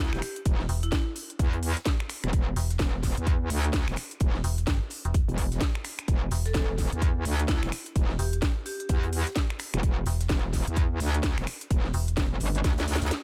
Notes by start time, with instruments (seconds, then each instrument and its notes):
Already playing: wobble bass D2
0.13 wobble bass E1, vibraphone G4, finger snap, snare
0.22 vibraphone G4, finger snap, snare, closed hi-hat, open hi-hat
0.36 closed hi-hat
0.45 wobble bass E1, kick, closed hi-hat
0.59 snare
0.69 fm bass E1, closed hi-hat, open hi-hat
0.83 vibraphone E4, closed hi-hat
0.92 vibraphone E4, kick, snare, closed hi-hat
1.16 closed hi-hat, open hi-hat
1.30 closed hi-hat
1.39 wobble bass E2, kick, closed hi-hat
1.53 closed hi-hat
1.63 closed hi-hat, open hi-hat
1.77 snare, closed hi-hat
1.86 kick, snare, closed hi-hat
2.00 finger snap
2.09 finger snap, closed hi-hat, open hi-hat
2.24 wobble bass E1, finger snap, closed hi-hat
2.33 wobble bass E1, kick, closed hi-hat
2.56 fm bass E1, snare, closed hi-hat, open hi-hat
2.70 snare, closed hi-hat
2.79 wobble bass E1, kick, snare, closed hi-hat
3.03 kick, snare, closed hi-hat, open hi-hat
3.17 wobble bass E2, closed hi-hat
3.27 kick, closed hi-hat
3.50 wobble bass D2, snare, closed hi-hat, open hi-hat
3.64 closed hi-hat
3.73 kick, snare, closed hi-hat
3.87 wobble bass E1, finger snap, snare
3.96 finger snap, snare, closed hi-hat, open hi-hat
4.11 closed hi-hat
4.20 wobble bass E1, kick, closed hi-hat
4.34 snare
4.44 fm bass E1, closed hi-hat, open hi-hat
4.58 closed hi-hat
4.67 fm bass G1, kick, snare, closed hi-hat
4.90 closed hi-hat, open hi-hat
5.05 fm bass E1, closed hi-hat
5.14 kick, closed hi-hat
5.28 wobble bass E1, closed hi-hat
5.38 kick, closed hi-hat, open hi-hat
5.52 snare, closed hi-hat
5.61 kick, snare, closed hi-hat
5.75 finger snap
5.84 finger snap, closed hi-hat, open hi-hat
5.99 finger snap, closed hi-hat
6.08 wobble bass E1, kick, closed hi-hat
6.31 fm bass E1, snare, closed hi-hat, open hi-hat
6.46 vibraphone A4, snare, closed hi-hat
6.54 wobble bass E1, vibraphone A4, kick, snare, closed hi-hat
6.78 kick, snare, closed hi-hat, open hi-hat
6.92 wobble bass E2, closed hi-hat
7.02 kick, closed hi-hat
7.25 wobble bass D2, snare, closed hi-hat, open hi-hat
7.39 closed hi-hat
7.48 vibraphone E4, kick, snare, closed hi-hat
7.63 wobble bass E1, finger snap, snare
7.72 finger snap, snare, closed hi-hat, open hi-hat
7.86 closed hi-hat
7.96 wobble bass E1, kick, closed hi-hat
8.09 snare
8.19 fm bass E1, vibraphone G4, closed hi-hat, open hi-hat
8.33 closed hi-hat
8.42 kick, snare, closed hi-hat
8.66 vibraphone G4, closed hi-hat, open hi-hat
8.80 closed hi-hat
8.89 wobble bass E2, kick, closed hi-hat
9.03 closed hi-hat
9.13 closed hi-hat, open hi-hat
9.27 snare, closed hi-hat
9.36 kick, snare, closed hi-hat
9.50 finger snap
9.59 finger snap, closed hi-hat, open hi-hat
9.74 wobble bass E1, finger snap, closed hi-hat
9.83 wobble bass E1, kick, closed hi-hat
10.06 fm bass E1, snare, closed hi-hat, open hi-hat
10.20 snare, closed hi-hat
10.29 wobble bass E1, kick, snare, closed hi-hat
10.53 kick, snare, closed hi-hat, open hi-hat
10.67 wobble bass E2, closed hi-hat
10.76 kick, closed hi-hat
11.00 wobble bass D2, snare, closed hi-hat, open hi-hat
11.14 closed hi-hat
11.23 kick, snare, closed hi-hat
11.37 wobble bass E1, finger snap, snare
11.47 finger snap, snare, closed hi-hat, open hi-hat
11.61 closed hi-hat
11.71 wobble bass E1, kick, closed hi-hat
11.84 snare
11.94 fm bass E1, closed hi-hat, open hi-hat
12.08 closed hi-hat
12.17 wobble bass E1, kick, snare, closed hi-hat
12.40 wobble bass G1, closed hi-hat, open hi-hat
12.55 closed hi-hat
12.64 wobble bass D2, kick, snare, closed hi-hat
12.78 snare, closed hi-hat
12.88 snare, closed hi-hat, open hi-hat
12.95 snare, closed hi-hat
13.01 wobble bass D2, snare, closed hi-hat
13.06 snare, closed hi-hat
13.11 snare, closed hi-hat